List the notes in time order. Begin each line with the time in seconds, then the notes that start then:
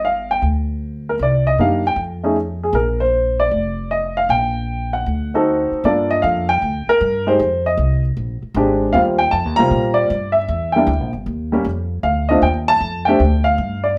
Already playing: G1
0.05 F5
0.31 G5
0.42 D2
1.09 A#4
1.19 C2 D5
1.47 D#5
1.58 F#2 A#3 D4 D#4 G4 F5
1.87 G5
1.96 F2
2.23 A3 C#4 D#4 G#4
2.63 G#4
2.73 A#1 A#4
3.00 C5
3.40 D5
3.51 F1
3.91 D#5
4.17 F5
4.29 A#1 G5
4.93 F#5
5.06 D2
5.34 C4 D#4 F#4 A4
5.71 muted upright bass stroke
5.84 G2 A#3 D4 F4 A4 D5
6.11 D#5
6.22 F2 F5
6.49 G5
6.62 D2
6.87 A#4, muted upright bass stroke
7.01 G2
7.27 G#3 C4 D#4 G4 C5
7.39 F2
7.66 D#5
7.77 C2
8.17 A#1
8.43 muted upright bass stroke
8.54 G#1 G#3 C4 D4 G4
8.93 D#2 G3 A#3 C4 F4 F5
9.19 G5
9.31 F2 A5
9.45 D#2
9.56 C2 G3 A#3 C4 F4 A#5
9.71 A#2
9.94 D5
10.10 G2
10.32 E5
10.48 E2
10.72 G3 A#3 G5
10.76 D4 E4
10.87 D2
11.00 A#1
11.13 G1
11.26 D#2
11.52 G3 A#3 C#4 G4
11.65 F2
12.03 D2 F5
12.29 A3 C4 D4 F4 D#5
12.42 D#2 G5
12.68 A5
12.81 F2
13.05 A3 C4 D4 G4 G5
13.20 D2
13.44 F5
13.58 G2
13.84 D5